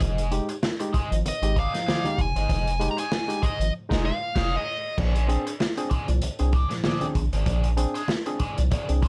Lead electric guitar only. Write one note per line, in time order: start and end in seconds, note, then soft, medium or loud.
1.28 1.59 D#5 medium
1.59 2.22 F5 medium
2.21 2.88 G#5 loud
2.91 2.98 A#5 medium
2.99 3.45 G#5 loud
3.43 3.72 D#5 medium
4.06 4.57 F5 loud
4.57 4.96 D#5 medium